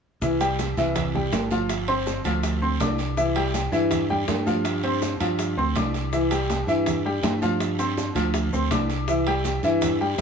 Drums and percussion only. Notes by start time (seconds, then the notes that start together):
0.22 high bongo, high conga, long guiro, maracas
0.40 high conga, high timbale, maracas
0.59 high bongo, high conga, high timbale, low timbale, short guiro, maracas
0.77 high conga, short guiro, maracas
0.96 high bongo, high conga, low conga, high timbale, long guiro, maracas
1.15 high conga, low conga
1.32 high bongo, low bongo, high conga, high timbale, low timbale, short guiro, maracas
1.51 high conga, short guiro, maracas
1.69 high bongo, high timbale, long guiro, maracas
1.88 high bongo, high conga, high timbale
2.06 high bongo, high conga, low timbale, short guiro, maracas
2.24 high bongo, high conga, high timbale, short guiro, maracas
2.43 high bongo, high conga, high timbale, long guiro, maracas
2.62 high conga
2.80 high bongo, low bongo, high conga, high timbale, low timbale, short guiro, maracas
2.98 high bongo, high timbale, short guiro, maracas
3.17 high bongo, high conga, long guiro, maracas
3.36 high conga, high timbale
3.54 high bongo, high conga, high timbale, low timbale, short guiro, maracas
3.73 high conga, short guiro, maracas
3.91 high bongo, high conga, low conga, high timbale, long guiro, maracas
4.09 high conga, low conga
4.28 high bongo, low bongo, high conga, high timbale, low timbale, short guiro, maracas
4.47 high conga, short guiro, maracas
4.65 high bongo, high timbale, long guiro, maracas
4.83 high bongo, high conga, high timbale
5.02 high bongo, high conga, low timbale, short guiro, maracas
5.20 high bongo, high conga, high timbale, short guiro, maracas
5.39 high bongo, high conga, high timbale, long guiro, maracas
5.58 high conga
5.76 high bongo, low bongo, high conga, high timbale, low timbale, short guiro, maracas
5.94 high bongo, high conga, high timbale, short guiro, maracas
6.13 high bongo, high conga, long guiro, maracas
6.31 high conga, high timbale, maracas
6.50 high bongo, high conga, high timbale, low timbale, short guiro, maracas
6.68 high conga, short guiro, maracas
6.86 high bongo, high conga, low conga, high timbale, long guiro, maracas
7.05 high conga
7.23 high bongo, low bongo, high conga, high timbale, low timbale, short guiro, maracas
7.42 high conga, short guiro, maracas
7.60 high bongo, high conga, high timbale, long guiro, maracas
7.79 high bongo, high conga, high timbale, maracas
7.97 high bongo, high conga, low timbale, short guiro, maracas
8.16 high bongo, high conga, high timbale, short guiro, maracas
8.34 high bongo, high conga, high timbale, long guiro, maracas
8.53 high conga, maracas
8.71 high bongo, low bongo, high conga, high timbale, low timbale, short guiro, maracas
8.89 high bongo, high timbale, short guiro, maracas
9.08 high bongo, high conga, long guiro, maracas
9.27 high conga, high timbale
9.44 high bongo, high conga, high timbale, low timbale, short guiro, maracas
9.63 high conga, short guiro, maracas
9.81 high bongo, high conga, low conga, high timbale, long guiro, maracas
10.00 high conga